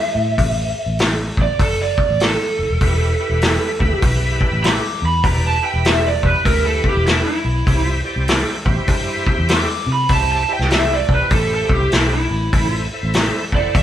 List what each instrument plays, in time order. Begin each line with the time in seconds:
Already playing: lead electric guitar E5
0.15 fingered electric bass A2
0.38 fingered electric bass A1, kick, open hi-hat
0.86 fingered electric bass A1
0.99 snare, open hi-hat
1.37 fingered electric bass A1, kick
1.42 lead electric guitar D5
1.59 fingered electric bass F#1, lead electric guitar A4, kick, open hi-hat
1.82 lead electric guitar D5
1.98 kick
2.09 fingered electric bass A1
2.20 lead electric guitar A4, snare, open hi-hat
2.59 fingered electric bass F#1
2.70 fingered electric bass E1
2.81 fingered electric bass E1, tonewheel organ E4 G4 B4 E5, kick, open hi-hat
3.20 tonewheel organ E4 G4 B4 E5
3.30 fingered electric bass E1
3.42 snare, open hi-hat
3.79 fingered electric bass D2, tonewheel organ E4 G4 B4 E5, kick
4.02 fingered electric bass B1, kick, open hi-hat
4.41 kick
4.52 fingered electric bass A1
4.64 lead electric guitar D6, snare, open hi-hat
5.02 fingered electric bass E2, lead electric guitar B5
5.24 fingered electric bass E1, tonewheel organ E4 G4 B4 D5, lead electric guitar A#5, kick, open hi-hat
5.46 lead electric guitar A5
5.63 tonewheel organ E4 G4 B4 E5, lead electric guitar G5
5.74 fingered electric bass E1
5.85 lead electric guitar E5, snare, open hi-hat
6.07 lead electric guitar D5
6.23 fingered electric bass E1, tonewheel organ E4 G4 B4 E5, lead electric guitar B4, kick
6.45 fingered electric bass D2, lead electric guitar A#4, kick, open hi-hat
6.66 lead electric guitar A4
6.84 kick
6.88 lead electric guitar G4
6.95 fingered electric bass E1
7.06 lead electric guitar E4, snare, open hi-hat
7.27 lead electric guitar E4
7.45 fingered electric bass B1
7.66 fingered electric bass C2, tonewheel organ E4 G4 C5 E5, kick, open hi-hat
8.04 tonewheel organ E4 G4 C5 D5
8.16 fingered electric bass C2
8.28 snare, open hi-hat
8.65 fingered electric bass A1, tonewheel organ E4 G4 C5 E5, kick
8.88 fingered electric bass G2, kick, open hi-hat
9.27 kick
9.38 fingered electric bass E2
9.49 lead electric guitar D6, snare, open hi-hat
9.87 fingered electric bass C3
9.93 lead electric guitar B5
10.09 fingered electric bass C2, tonewheel organ E4 G4 C5 E5, lead electric guitar A5, kick, open hi-hat
10.32 lead electric guitar A5
10.48 tonewheel organ E4 G4 C5 E5
10.53 lead electric guitar G5
10.59 fingered electric bass C2, snare
10.70 lead electric guitar E5, snare, open hi-hat
10.94 lead electric guitar D5
11.09 fingered electric bass C2, tonewheel organ E4 G4 C5 E5, kick
11.14 lead electric guitar B4
11.30 fingered electric bass A1, lead electric guitar A4, kick, open hi-hat
11.55 lead electric guitar A4
11.69 fingered electric bass C2, lead electric guitar G4, kick
11.92 fingered electric bass B1, lead electric guitar E4, snare, open hi-hat
12.14 lead electric guitar E4
12.31 fingered electric bass A1
12.53 fingered electric bass A1, tonewheel organ E4 A4 C5 E5, kick, open hi-hat
12.93 tonewheel organ E4 A4 C5 E5
13.03 fingered electric bass A1
13.14 snare, open hi-hat
13.52 fingered electric bass F#1, tonewheel organ E4 A4 C5 F#5, lead electric guitar D5, kick
13.75 fingered electric bass E2, lead electric guitar E5, kick, open hi-hat